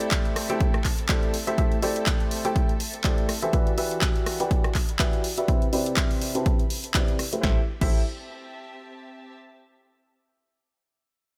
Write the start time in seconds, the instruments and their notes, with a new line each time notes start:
Already playing: upright piano A3 E4 G4 A4 C5 D5, string section C4 A4 E5 A5 B5
0.01 closed hi-hat
0.11 kick, clap, closed hi-hat
0.25 closed hi-hat
0.36 cross-stick, open hi-hat
0.50 upright piano A3 E4 G4 A4 C5 G5, closed hi-hat
0.61 kick, closed hi-hat
0.74 cross-stick, closed hi-hat
0.84 kick, clap, open hi-hat
0.98 closed hi-hat
1.09 upright piano A3 E4 G4 A4 C5 D5, kick, clap, closed hi-hat
1.23 closed hi-hat
1.34 open hi-hat
1.47 upright piano A3 E4 G4 A4 C5 E5, closed hi-hat
1.58 upright piano A3 E4 G4 A4 C5 E5, kick, closed hi-hat
1.72 closed hi-hat
1.82 upright piano A3 E4 G4 A4 C5 D5, open hi-hat
1.96 closed hi-hat
2.06 kick, clap, closed hi-hat
2.20 closed hi-hat
2.31 open hi-hat
2.45 upright piano A3 E4 G4 A4 C5 G5, closed hi-hat
2.56 kick, closed hi-hat
2.69 closed hi-hat
2.80 open hi-hat
2.94 closed hi-hat
3.04 upright piano A3 E4 G4 A4 C5 D5, kick, clap, closed hi-hat
3.18 closed hi-hat
3.29 cross-stick, open hi-hat
3.42 upright piano E3 E4 G4 A4 C5 E5, closed hi-hat
3.53 upright piano E3 F#4 G4 B4 D5 E5, string section D4, kick, closed hi-hat
3.67 closed hi-hat
3.78 upright piano E3 F#4 G4 B4 D5 E5, string section F#5, open hi-hat
3.91 closed hi-hat
4.01 kick, clap, closed hi-hat
4.16 closed hi-hat
4.26 cross-stick, open hi-hat
4.40 upright piano E3 F#4 G4 B4 D5 G5, closed hi-hat
4.51 kick, closed hi-hat
4.64 cross-stick, closed hi-hat
4.75 kick, clap, open hi-hat
4.89 closed hi-hat
4.99 upright piano E3 F#4 G4 B4 D5 E5, kick, clap, closed hi-hat
5.13 closed hi-hat
5.24 open hi-hat
5.38 upright piano F#4 G4 B4 D5 E5, closed hi-hat
5.48 upright piano C3 E4 G4 B4 C5 E5, string section C4, kick, closed hi-hat
5.62 string section B5, closed hi-hat
5.73 upright piano C3 E4 G4 B4 C5 D5, open hi-hat
5.86 closed hi-hat
5.97 kick, clap, closed hi-hat
6.11 open hi-hat
6.22 open hi-hat
6.35 upright piano C3 E4 G4 B4 C5 A5, closed hi-hat
6.46 kick, closed hi-hat
6.59 closed hi-hat
6.70 open hi-hat
6.84 closed hi-hat
6.94 upright piano C3 E4 G4 B4 C5 D5, kick, clap, closed hi-hat
7.08 closed hi-hat
7.19 cross-stick, open hi-hat
7.33 upright piano A3 E4 G4 B4 C5 E5, closed hi-hat
7.43 analog synth bass A1, string section C4, upright piano E4 G4 A4 C5 E5, kick, snare
7.52 string section G4
7.59 string section E5
7.66 string section A5
7.81 analog synth bass A1, upright piano E4 G4 A4 C5 E5, kick, crash